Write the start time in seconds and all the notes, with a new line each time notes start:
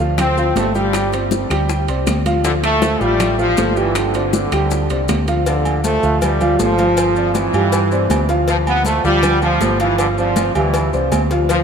0.00 D2 F3 F4 F5
0.18 C4, high bongo, high conga, low conga, high timbale, claves, maracas
0.37 F3 F4 F5, high conga, maracas
0.56 G1 A3 A4 C5, high bongo, low bongo, high conga, high timbale, low timbale, maracas
0.75 G3 G4 G5, high bongo, high conga, maracas
0.93 high bongo, high conga, high timbale, claves, maracas
1.12 C4 C5 D5, high bongo, high conga, high timbale, maracas
1.31 high bongo, high conga, low timbale, maracas
1.50 D2 G3 G4 G5, high bongo, high timbale, claves, maracas
1.69 high bongo, high conga, maracas
1.88 C2 C4 C5 D5, high conga, high timbale, maracas
2.07 D2, high bongo, low bongo, high conga, high timbale, low timbale, claves, maracas
2.26 F3 F4 F5, high bongo, high conga, high timbale, maracas
2.44 D3 F3 F4 F5, high bongo, high conga, high timbale, maracas
2.63 A3, high bongo, high conga, high timbale, claves, maracas
2.82 A3 A4 C5, high bongo, high conga, high timbale, low timbale, maracas
3.01 A1 F3 G3 F4 F5, high bongo, high conga, maracas
3.20 high bongo, high conga, low conga, high timbale, claves, maracas
3.39 F3 F4 F5, high conga, maracas
3.57 G1 A3 A4 C5, high bongo, low bongo, high conga, high timbale, low timbale, maracas
3.76 E3 G3 G4 G5, high bongo, maracas
3.95 D3, high bongo, high conga, high timbale, claves, maracas
4.14 C4 C5 D5, high bongo, high conga, high timbale, maracas
4.33 high bongo, high conga, low timbale, maracas
4.52 D2 G3 G4 G5, high bongo, high timbale, claves, maracas
4.71 high bongo, high conga, maracas
4.90 C2 C4 C5 D5, high conga, high timbale, maracas
5.08 D2, high bongo, low bongo, high conga, high timbale, low timbale, claves, maracas
5.28 F3 F4 F5, high bongo, high timbale, maracas
5.46 D3 F3 F4 F5, cowbell, high conga, low agogo, maracas
5.65 high conga, low agogo, maracas
5.84 A3 A4 C5, cowbell, high conga, low timbale, maracas
6.03 D2 F3 F4 F5, high conga, maracas
6.22 G3, cowbell, high conga, low conga, low agogo, maracas
6.41 F3 F4 F5, high conga, low conga, low agogo, maracas
6.59 G1 F3 A3 A4 C5, cowbell, high conga, low timbale, maracas
6.78 F3 F4 F5, cowbell, high conga, low agogo, maracas
6.97 cowbell, low agogo, maracas
7.16 C4 C5 D5, high conga, maracas
7.35 E3, cowbell, high conga, low timbale, low agogo, maracas
7.53 G2 G3 G4 F5, low agogo, maracas
7.72 cowbell, high conga, low agogo, maracas
7.91 C4 C5 D5, high conga, maracas
8.10 D2, cowbell, high conga, low timbale, low agogo, maracas
8.29 F3 F4 F5, cowbell, maracas
8.48 F3 F4 F5, cowbell, high conga, low agogo, maracas
8.66 B3, high conga, low agogo, maracas
8.85 A3 A4 C5, cowbell, high conga, low timbale, maracas
9.04 D2 F3 G3 F4 F5, high conga, maracas
9.23 cowbell, high conga, low conga, low agogo, maracas
9.42 F3 F4 F5, high conga, low agogo, maracas
9.61 G1 A3 A4 C5, cowbell, high conga, low timbale, maracas
9.80 E3 F3 F4 F5, cowbell, low agogo, maracas
9.98 D3, cowbell, high conga, low agogo, maracas
10.18 F3 C4 C5 D5, high conga, maracas
10.36 cowbell, high conga, low timbale, low agogo, maracas
10.55 D2 E3 G3 G4 F5, low agogo, maracas
10.74 cowbell, high conga, low agogo, maracas
10.93 C2 C4 C5 D5, high conga, maracas
11.12 D2, cowbell, high conga, low timbale, low agogo, maracas
11.31 F3 F4 F5, cowbell, maracas
11.49 F3 F4 F5, cowbell, high conga, low agogo, maracas